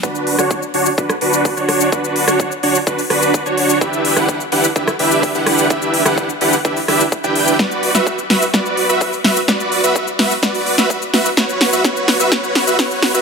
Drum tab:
HH |--o---o---o-o-o-|--o---o--oo---o-|--o---o---o-o-o-|--o---o--oo---o-|
SH |xx-xxx-xxx-xxx-x|xx-xxx-xxx-xxx-x|xx-xxx-xxx-xxx-x|xx-xxx-xxx-xxx-x|
SD |---r-----r----r-|---r------r-----|---r-----r----r-|---r------r-----|
BD |o---o---o---o---|o---o---o---o---|o---o---o---o---|o---o---o---o---|

HH |--o---o---o-o-o-|--o---o--oo---o-|--o---o---o-o-o-|
SH |xx-xxx-xxx-xxx-x|xx-xxx-xxx-xxx-x|xx-xxx-xxx-xxx-x|
SD |o--o--o-o-----o-|o-----o-o--o--o-|o-o-o-o-o-o-o-o-|
BD |o---o---o---o---|o---o---o---o---|o---o---o---o---|